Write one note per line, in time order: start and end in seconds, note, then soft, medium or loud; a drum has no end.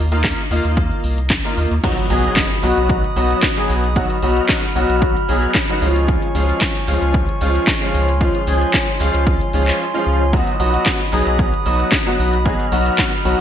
0.00 0.33 D#2 medium
0.12 0.39 A#3 medium
0.12 0.40 D#4 medium
0.12 0.40 F4 loud
0.12 closed hi-hat medium
0.24 kick loud
0.24 snare medium
0.24 clap loud
0.39 closed hi-hat soft
0.51 0.60 D#2 medium
0.51 1.16 A#3 medium
0.51 1.17 D#4 medium
0.51 1.17 F4 loud
0.51 open hi-hat medium
0.65 0.91 D#2 loud
0.65 closed hi-hat medium
0.77 kick loud
0.92 closed hi-hat soft
1.04 1.40 C2 loud
1.04 open hi-hat medium
1.18 closed hi-hat medium
1.30 kick loud
1.30 snare medium
1.30 clap loud
1.45 1.72 A#3 medium
1.45 1.72 D#4 medium
1.45 1.73 F4 medium
1.45 closed hi-hat medium
1.57 1.67 D#2 loud
1.57 open hi-hat medium
1.71 1.80 D#2 medium
1.71 closed hi-hat medium
1.83 2.03 F#3 medium
1.83 2.03 B3 medium
1.83 2.03 D#4 medium
1.83 5.78 F#4 medium
1.83 2.03 F#4 loud
1.83 5.78 D#5 medium
1.83 5.78 B5 medium
1.83 3.94 D#6 medium
1.83 kick loud
1.83 crash loud
1.83 impact medium
1.83 shaker medium
1.98 closed hi-hat medium
1.98 shaker medium
2.10 2.28 B1 medium
2.10 2.48 F#3 medium
2.10 2.48 B3 medium
2.10 2.48 D#4 medium
2.10 2.48 G#4 loud
2.10 open hi-hat medium
2.10 shaker medium
2.24 closed hi-hat medium
2.24 shaker medium
2.36 kick loud
2.36 snare medium
2.36 clap loud
2.36 clap medium
2.36 shaker medium
2.51 closed hi-hat soft
2.51 shaker soft
2.63 2.73 B1 medium
2.63 3.01 F#3 medium
2.63 3.01 B3 medium
2.63 3.01 D#4 medium
2.63 3.01 F#4 loud
2.63 clap medium
2.63 open hi-hat medium
2.63 shaker medium
2.77 3.04 B1 medium
2.77 closed hi-hat medium
2.77 shaker medium
2.90 kick loud
2.90 shaker medium
3.04 closed hi-hat medium
3.04 shaker soft
3.16 3.34 B1 loud
3.16 3.44 F#3 medium
3.16 3.44 B3 medium
3.16 3.44 D#4 medium
3.16 3.44 F#4 medium
3.16 open hi-hat medium
3.16 shaker medium
3.31 closed hi-hat medium
3.31 shaker medium
3.42 kick loud
3.42 snare medium
3.42 clap loud
3.42 clap medium
3.42 shaker medium
3.57 3.85 F#3 medium
3.57 3.85 B3 medium
3.57 3.85 D#4 medium
3.57 3.85 G#4 medium
3.57 closed hi-hat medium
3.57 shaker medium
3.69 4.05 B1 loud
3.69 open hi-hat medium
3.69 shaker medium
3.84 closed hi-hat medium
3.84 shaker medium
3.96 4.15 F#3 medium
3.96 4.15 B3 medium
3.96 4.15 D#4 medium
3.96 4.15 F#4 loud
3.96 5.80 F6 medium
3.96 kick loud
3.96 shaker medium
4.10 closed hi-hat medium
4.10 shaker medium
4.22 4.40 B1 medium
4.22 4.60 F#3 medium
4.22 4.60 B3 medium
4.22 4.60 D#4 medium
4.22 4.60 F#4 loud
4.22 open hi-hat medium
4.22 shaker medium
4.37 closed hi-hat medium
4.37 shaker medium
4.49 kick loud
4.49 snare medium
4.49 clap loud
4.49 clap medium
4.49 shaker medium
4.63 closed hi-hat soft
4.63 shaker soft
4.75 4.85 B1 medium
4.75 5.13 F#3 medium
4.75 5.13 B3 medium
4.75 5.13 D#4 medium
4.75 5.13 F#4 loud
4.75 open hi-hat medium
4.75 shaker medium
4.89 5.16 B1 medium
4.89 closed hi-hat medium
4.89 shaker medium
5.02 kick loud
5.02 shaker medium
5.16 closed hi-hat medium
5.16 shaker soft
5.29 5.47 B1 medium
5.29 5.57 F#3 medium
5.29 5.57 B3 medium
5.29 5.57 D#4 medium
5.29 5.57 G#4 medium
5.29 open hi-hat medium
5.29 shaker medium
5.43 closed hi-hat medium
5.43 shaker medium
5.55 kick loud
5.55 snare loud
5.55 clap loud
5.55 clap medium
5.55 shaker medium
5.69 5.82 F#3 medium
5.69 5.82 B3 medium
5.69 5.82 D#4 medium
5.69 5.82 F#4 medium
5.69 closed hi-hat medium
5.69 shaker medium
5.82 6.18 C#2 loud
5.82 6.25 F3 medium
5.82 6.25 G#3 medium
5.82 6.25 C#4 medium
5.82 10.29 F4 medium
5.82 6.25 F4 loud
5.82 10.29 C#5 medium
5.82 10.29 G#5 medium
5.82 7.92 C#6 medium
5.82 open hi-hat medium
5.82 shaker medium
5.96 closed hi-hat medium
5.96 shaker medium
6.08 kick loud
6.08 shaker medium
6.22 closed hi-hat medium
6.22 shaker medium
6.35 6.53 C#2 medium
6.35 6.72 F3 medium
6.35 6.72 G#3 medium
6.35 6.73 C#4 medium
6.35 6.73 F4 medium
6.35 open hi-hat medium
6.35 shaker medium
6.49 closed hi-hat medium
6.49 shaker medium
6.61 kick loud
6.61 snare medium
6.61 clap medium
6.61 clap loud
6.61 shaker medium
6.76 closed hi-hat soft
6.76 shaker soft
6.88 6.97 C#2 medium
6.88 7.26 F3 medium
6.88 7.26 G#3 medium
6.88 7.26 C#4 medium
6.88 7.26 F4 loud
6.88 clap medium
6.88 open hi-hat medium
6.88 shaker medium
7.02 7.28 C#2 medium
7.02 closed hi-hat medium
7.02 shaker medium
7.14 kick loud
7.14 shaker medium
7.29 closed hi-hat soft
7.29 shaker soft
7.41 7.59 C#2 loud
7.41 7.69 F3 medium
7.41 7.69 G#3 medium
7.41 7.69 C#4 medium
7.41 7.69 F4 loud
7.41 open hi-hat medium
7.41 shaker medium
7.55 closed hi-hat medium
7.55 shaker medium
7.67 kick loud
7.67 snare loud
7.67 clap loud
7.67 clap medium
7.67 shaker medium
7.82 8.09 F3 medium
7.82 8.09 G#3 medium
7.82 8.10 C#4 medium
7.82 8.10 F4 loud
7.82 closed hi-hat medium
7.82 shaker medium
7.94 8.30 C#2 loud
7.94 10.31 C6 medium
7.94 open hi-hat medium
7.94 shaker medium
8.08 closed hi-hat medium
8.08 shaker medium
8.21 8.40 F3 medium
8.21 8.40 G#3 medium
8.21 8.40 C#4 medium
8.21 8.40 F4 loud
8.21 kick loud
8.21 shaker medium
8.35 closed hi-hat medium
8.35 shaker medium
8.47 8.65 C#2 medium
8.47 8.85 F3 medium
8.47 8.85 G#3 medium
8.47 8.85 C#4 medium
8.47 8.85 G#4 medium
8.47 open hi-hat medium
8.47 shaker medium
8.61 closed hi-hat medium
8.61 shaker medium
8.73 kick loud
8.73 snare medium
8.73 clap loud
8.73 clap medium
8.73 shaker medium
8.88 closed hi-hat soft
8.88 shaker soft
9.00 9.10 C#2 medium
9.00 9.38 F3 medium
9.00 9.38 G#3 medium
9.00 9.38 C#4 medium
9.00 9.38 F4 loud
9.00 clap medium
9.00 open hi-hat medium
9.00 shaker medium
9.14 9.41 C#2 medium
9.14 closed hi-hat medium
9.14 shaker medium
9.27 kick loud
9.27 shaker medium
9.41 closed hi-hat soft
9.41 shaker soft
9.53 9.71 C#2 loud
9.53 9.81 F3 medium
9.53 9.81 G#3 medium
9.53 9.82 C#4 medium
9.53 9.82 F4 loud
9.53 open hi-hat medium
9.53 shaker medium
9.68 clap medium
9.68 closed hi-hat medium
9.68 shaker medium
9.94 10.22 F3 medium
9.94 10.22 G#3 medium
9.94 10.22 C#4 medium
9.94 10.22 F4 medium
10.07 10.42 C#2 loud
10.33 10.52 F#3 medium
10.33 10.52 B3 medium
10.33 10.52 D#4 medium
10.33 13.41 F#4 medium
10.33 10.52 F#4 loud
10.33 13.41 D#5 medium
10.33 13.41 B5 medium
10.33 12.43 D#6 medium
10.33 kick loud
10.33 shaker medium
10.47 closed hi-hat medium
10.47 shaker medium
10.60 10.78 B1 medium
10.60 10.97 F#3 medium
10.60 10.97 B3 medium
10.60 10.97 D#4 medium
10.60 10.98 F#4 loud
10.60 open hi-hat medium
10.60 shaker medium
10.74 closed hi-hat medium
10.74 shaker medium
10.86 kick loud
10.86 snare medium
10.86 clap loud
10.86 clap medium
10.86 shaker medium
11.00 closed hi-hat soft
11.00 shaker soft
11.13 11.22 B1 medium
11.13 11.50 F#3 medium
11.13 11.50 B3 medium
11.13 11.50 D#4 medium
11.13 11.51 G#4 medium
11.13 clap medium
11.13 open hi-hat medium
11.13 shaker medium
11.27 11.53 B1 medium
11.27 closed hi-hat medium
11.27 shaker medium
11.39 kick loud
11.39 shaker medium
11.54 closed hi-hat soft
11.54 shaker soft
11.66 11.84 B1 loud
11.66 11.94 F#3 medium
11.66 11.94 B3 medium
11.66 11.94 D#4 medium
11.66 11.94 F#4 medium
11.66 open hi-hat medium
11.66 shaker medium
11.80 closed hi-hat medium
11.80 shaker medium
11.92 kick loud
11.92 snare loud
11.92 clap loud
11.92 clap medium
11.92 shaker medium
12.06 12.34 F#3 medium
12.06 12.34 B3 medium
12.06 12.34 D#4 medium
12.06 12.34 F#4 medium
12.06 closed hi-hat medium
12.06 shaker medium
12.19 12.55 B1 loud
12.19 open hi-hat medium
12.19 shaker medium
12.33 closed hi-hat medium
12.33 shaker medium
12.45 12.64 F#3 medium
12.45 12.65 B3 medium
12.45 12.65 D#4 medium
12.45 12.65 G#4 loud
12.45 13.41 F6 medium
12.45 kick loud
12.45 shaker medium
12.59 closed hi-hat medium
12.59 shaker medium
12.72 12.90 B1 medium
12.72 13.10 F#3 medium
12.72 13.10 B3 medium
12.72 13.10 D#4 medium
12.72 13.10 F#4 loud
12.72 open hi-hat medium
12.72 shaker medium
12.86 closed hi-hat medium
12.86 shaker medium
12.98 kick loud
12.98 snare medium
12.98 clap loud
12.98 clap medium
12.98 shaker medium
13.13 closed hi-hat soft
13.13 shaker soft
13.25 13.35 B1 medium
13.25 13.41 F#3 medium
13.25 13.41 B3 medium
13.25 13.41 D#4 medium
13.25 13.41 F#4 loud
13.25 open hi-hat medium
13.25 shaker medium